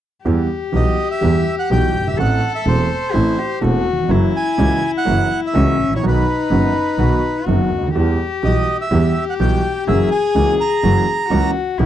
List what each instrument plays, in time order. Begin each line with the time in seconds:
0.25 grand piano E2 E3 G3 B3 G4, double bass E2, cello G4
0.72 grand piano B1 B2 E3 G3 B3 G4, double bass B1, bandoneon D#5
1.11 bandoneon E5
1.21 grand piano E2 E3 G3 B3 G4, double bass E2
1.59 bandoneon F#5
1.71 double bass B1, grand piano B1 B2 E3 G3 B3 G4, bandoneon G5
1.95 double bass G1
2.01 grand piano F#1
2.06 grand piano G1, bandoneon E5
2.13 grand piano G#1
2.17 grand piano A1 A2 E3 A3 C4 A4, double bass A1, cello A4, bandoneon F#5
2.55 bandoneon E5
2.66 grand piano E1 E2 E3 A3 C4 A4, double bass E1, bandoneon C5
3.13 grand piano A1 A2 E3 A3 C4 A4, double bass A1, cello E4
3.39 cello G4
3.61 grand piano E1 E2 E3 A3 C4 A4, double bass E1, cello F#4
3.93 grand piano D#2
3.98 grand piano E2
4.04 grand piano F2
4.09 double bass F#1, grand piano F#2 E3 F#3 A#3 C#4 F#4, cello E4
4.36 bandoneon G#5
4.58 grand piano C#2 C#3 E3 A#3 C#4 F#4, double bass C#2
4.98 bandoneon F#5
5.05 double bass F#1, grand piano F#2 E3 F#3 A#3 C#4 F#4
5.47 bandoneon E5
5.53 grand piano C#2 C#3 E3 A#3 C#4 F#4, double bass C#2, cello C#4
5.79 grand piano G#1, double bass A1
5.89 grand piano A1
5.95 grand piano A#1, cello E4, bandoneon C#5
6.02 double bass B1, grand piano B1 B2 D#3 F#3 B3 F#4, cello D#4
6.08 bandoneon B4
6.51 double bass F#1, grand piano F#1 F#2 D#3 F#3 B3 F#4
6.98 double bass B1, grand piano B1 B2 D#3 F#3 B3 F#4
7.46 double bass F#1, grand piano F#1 F#2 D#3 F#3 B3 F#4, cello F#4
7.70 double bass D2
7.78 grand piano C#2
7.83 grand piano D2
7.88 grand piano D#2
7.95 double bass E2, grand piano E2 E3 G3 B3 G4, cello G4
8.43 grand piano B1 B2 E3 G3 B3 G4, double bass B1, bandoneon D#5
8.81 bandoneon E5
8.91 double bass E2, grand piano E2 E3 G3 B3 G4, cello G4
9.30 bandoneon F#5
9.40 grand piano B1 B2 E3 G3 B3 G4, double bass B1, bandoneon G5
9.87 double bass F#1, grand piano F#2 E3 F#3 A#3 C#4 F#4, cello G#4, bandoneon E5
10.11 bandoneon G#5
10.35 double bass C#2, grand piano C#2 C#3 E3 A#3 C#4 F#4
10.61 bandoneon A#5
10.83 double bass F#1, grand piano F#2 E3 F#3 A#3 C#4 F#4
11.29 grand piano C#2 C#3 E3 A#3 C#4 F#4, double bass C#2, cello F#4
11.78 double bass B1, grand piano B1 B2 E3 G3 B3 G4, cello E4